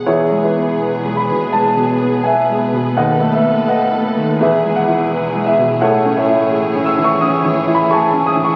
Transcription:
<<
  \new Staff \with { instrumentName = "Violin section" } { \time 4/4 \key e \major \tempo 4 = 84 b'1~ | b'1 | cis''1 | }
  \new Staff \with { instrumentName = "Grand piano" } { \time 4/4 \key e \major <e' gis' cis''>8 <e' gis' b'>4 b''8 a''4 <e'' gis''>4 | <b' dis'' fis''>8 e''8 <dis'' fis''>4 <gis' b' e''>8 fis''4 e''8 | <a' cis'' fis''>8 <a' cis'' e''>4 e'''16 cis'''16 dis'''8. b''16 <gis'' a'' cis'''>8 dis'''16 cis'''16 | }
  \new Staff \with { instrumentName = "Grand piano" } { \clef bass \time 4/4 \key e \major \tuplet 3/2 { e,8 gis8 b8 b'8 gis8 b,8 gis8 b,8 b8 b'8 gis8 b,8 } | \tuplet 3/2 { dis,8 a8 b8 b'8 a8 dis8 e,8 gis8 e'8 b'8 gis8 b,8 } | \tuplet 3/2 { a,8 cis'8 e'8 gis'8 cis'8 e8 cis'8 e8 e'8 gis'8 cis'8 e8 } | }
  \new Staff \with { instrumentName = "Violin section" } { \time 4/4 \key e \major gis'1 | a'2 gis'2~ | gis'1 | }
  \new Staff \with { instrumentName = "Viola section" } { \time 4/4 \key e \major b1~ | b2 e'2~ | e'1 | }
  \new Staff \with { instrumentName = "Cello section" } { \clef bass \time 4/4 \key e \major e,1 | dis,2 e,2 | a,1 | }
  \new Staff \with { instrumentName = "Double bass section" } { \clef bass \time 4/4 \key e \major e,,1 | dis,2 e,,2 | a,,1 | }
>>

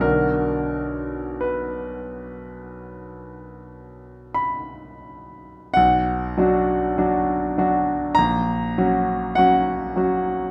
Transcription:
\new Staff \with { instrumentName = "Grand piano" } { \time 4/4 \key b \minor \tempo 4 = 48 << { ais'4 b'2 b''4 | fis''2 ais''4 fis''4 | } \\ { <b,, d d' fis'>1 | b,,8 <fis d' fis'>8 <fis d' fis'>8 <fis d' fis'>8 ais,,8 <fis cis' fis'>8 <fis cis' fis'>8 <fis cis' fis'>8 | } >> }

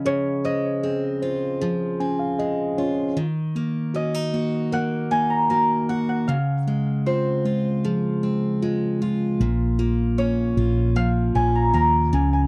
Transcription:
<<
  \new Staff \with { instrumentName = "Harp" } { \time 4/4 \key bes \minor \tempo 4 = 77 des''8 ees''4. r2 | r4 ees''4 ges''8 aes''16 bes''16 bes''8 ges''16 ges''16 | f''4 c''4 r2 | r4 des''4 f''8 aes''16 bes''16 bes''8 aes''16 aes''16 | }
  \new Staff \with { instrumentName = "Tine electric piano" } { \time 4/4 \key bes \minor << { r2 r8 aes''16 f''16 ees''8 des''8 | r1 | r1 | r1 | } \\ { <des' aes'>8 c''8 aes'8 c''8 aes'8 des'8 aes'8 des'8 | ees8 bes8 ges'8 bes8 bes'8 bes8 ges'8 bes8 | des8 aes8 f'8 aes8 aes'8 aes8 f'8 aes8 | bes8 f'8 bes8 f'8 bes8 f'8 bes8 des'8 | } >> }
  \new Staff \with { instrumentName = "Steel-string acoustic guitar" } { \time 4/4 \key bes \minor des8 aes8 c'8 f'8 f8 c'8 aes8 f'8 | ees8 bes8 des'16 ees'16 ges'8 bes8 ees'8 bes8 ges'8 | des8 aes8 c'8 f'8 f8 c'8 aes8 f'8 | bes,8 bes8 des'8 f'8 f8 des'8 bes8 des8 | }
  \new Staff \with { instrumentName = "Fingered electric bass" } { \clef bass \time 4/4 \key bes \minor r1 | r1 | r1 | bes,,4. bes,,4 bes,,8 ees,8 des,8 | }
>>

